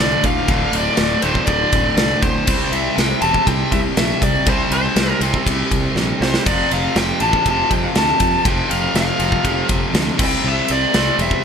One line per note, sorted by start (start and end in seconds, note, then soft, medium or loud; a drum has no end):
0.00 0.15 C2 medium
0.00 0.46 D2 medium
0.00 0.48 A2 medium
0.00 0.48 D3 medium
0.00 0.24 D5 medium
0.23 0.39 D2 medium
0.23 0.76 F5 loud
0.23 kick medium
0.23 ride medium
0.48 0.64 D1 medium
0.48 1.22 D2 medium
0.48 1.23 A2 loud
0.48 1.22 D3 loud
0.48 kick loud
0.48 ride loud
0.73 0.88 D1 medium
0.73 1.27 D5 medium
0.73 ride medium
0.97 1.14 D1 medium
0.97 snare loud
0.97 ride medium
1.22 1.39 D1 medium
1.22 2.45 D2 medium
1.22 2.47 A2 medium
1.22 2.47 D3 medium
1.22 1.49 C5 medium
1.22 ride medium
1.35 kick medium
1.46 1.63 D1 loud
1.46 1.95 D5 loud
1.46 kick loud
1.46 ride loud
1.72 1.88 D1 medium
1.72 kick loud
1.72 ride medium
1.96 2.13 C2 loud
1.96 2.23 D5 medium
1.96 snare loud
1.96 ride medium
2.22 2.38 D1 medium
2.22 2.74 C5 loud
2.22 kick loud
2.22 ride medium
2.46 2.63 C2 loud
2.46 3.25 C3 loud
2.46 3.23 G3 loud
2.46 3.21 C4 loud
2.46 kick loud
2.46 crash loud
2.72 2.87 C2 medium
2.72 2.99 E5 medium
2.72 ride medium
2.96 3.13 C2 medium
2.96 3.20 G5 loud
2.96 snare medium
2.96 ride medium
3.22 3.37 E1 loud
3.22 4.46 C3 medium
3.22 4.46 G3 medium
3.22 4.49 C4 medium
3.22 3.47 A5 loud
3.22 ride medium
3.34 kick medium
3.47 3.63 C2 loud
3.47 3.71 G5 loud
3.47 kick medium
3.47 ride loud
3.71 3.88 C2 medium
3.71 3.78 E5 medium
3.71 kick medium
3.71 ride medium
3.97 4.13 A#1 medium
3.97 4.22 E5 medium
3.97 snare loud
3.97 ride loud
4.22 4.37 C2 medium
4.22 4.46 D5 loud
4.22 kick medium
4.22 ride medium
4.46 4.62 C2 loud
4.46 5.20 C3 medium
4.46 5.21 G3 loud
4.46 5.22 C4 medium
4.46 4.72 C5 loud
4.46 kick loud
4.46 ride loud
4.71 4.87 C2 medium
4.71 5.19 C5 medium
4.71 ride medium
4.96 5.12 C2 medium
4.96 snare loud
4.96 ride loud
5.21 5.36 C2 loud
5.21 6.45 G3 medium
5.21 6.48 C4 medium
5.21 ride medium
5.25 6.45 C3 medium
5.34 kick medium
5.46 5.62 C2 loud
5.46 kick loud
5.46 ride loud
5.71 5.87 C2 medium
5.71 kick medium
5.71 ride medium
5.95 6.11 A#1 medium
5.95 snare medium
6.21 6.36 C2 medium
6.21 6.47 C5 medium
6.21 snare loud
6.34 snare loud
6.45 6.62 F1 medium
6.45 7.24 F2 medium
6.45 7.20 C3 loud
6.45 7.20 F3 medium
6.45 6.72 D5 loud
6.45 kick loud
6.45 crash loud
6.71 6.87 F1 medium
6.71 6.98 F5 loud
6.71 ride medium
6.95 7.11 F1 medium
6.95 7.21 G5 loud
6.95 snare loud
6.95 ride medium
7.20 7.36 A1 medium
7.20 8.44 C3 medium
7.20 8.44 F3 medium
7.20 7.47 A5 loud
7.20 ride medium
7.24 8.43 F2 medium
7.33 kick medium
7.46 7.62 F1 medium
7.46 7.73 A5 loud
7.46 kick loud
7.46 ride loud
7.71 7.86 F2 medium
7.71 7.85 G5 loud
7.71 kick medium
7.71 ride medium
7.83 7.96 F5 medium
7.95 8.11 D2 loud
7.95 8.47 A5 loud
7.95 snare loud
7.95 ride loud
8.20 8.35 F2 medium
8.20 kick medium
8.20 ride medium
8.45 8.61 F1 loud
8.45 9.18 F2 medium
8.45 9.19 C3 medium
8.45 9.18 F3 loud
8.45 8.69 G5 loud
8.45 kick loud
8.45 ride loud
8.69 8.86 F1 medium
8.69 8.95 F5 medium
8.69 ride medium
8.94 9.10 F1 medium
8.94 9.66 F5 medium
8.94 snare loud
8.94 ride loud
9.19 9.35 F1 loud
9.19 10.18 F2 medium
9.19 10.17 C3 medium
9.19 10.18 F3 medium
9.19 ride medium
9.32 kick loud
9.45 9.60 F1 loud
9.45 kick medium
9.45 ride loud
9.69 9.85 F1 medium
9.69 kick medium
9.69 ride medium
9.94 10.09 D2 medium
9.94 snare loud
9.94 ride loud
10.18 10.35 C2 medium
10.18 10.93 C3 medium
10.18 10.94 G3 loud
10.18 10.96 C4 loud
10.18 kick loud
10.18 crash loud
10.25 10.47 G5 loud
10.44 10.59 C2 medium
10.44 10.71 E5 loud
10.68 10.85 C2 medium
10.68 11.21 D5 medium
10.68 ride medium
10.93 11.10 C2 medium
10.93 11.44 C3 medium
10.93 11.44 G3 medium
10.93 11.44 C4 medium
10.93 snare loud
10.93 ride medium
11.19 11.34 E1 medium
11.19 11.43 E5 medium
11.19 ride medium
11.31 kick medium